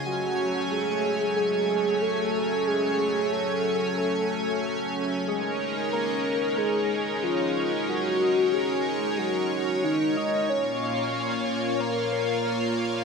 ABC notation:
X:1
M:4/4
L:1/16
Q:1/4=92
K:Gblyd
V:1 name="Soft synth lead"
G4 A4 A4 =A4 | A4 =A4 A6 z2 | A4 B4 A4 F3 z | G4 A4 G4 E2 e2 |
d8 B2 B4 z2 |]
V:2 name="Analog synth pad"
[G,=A,Dd_a]16- | [G,=A,Dd_a]16 | [A,EBd]16- | [A,EBd]16 |
[B,,B,Ff]16 |]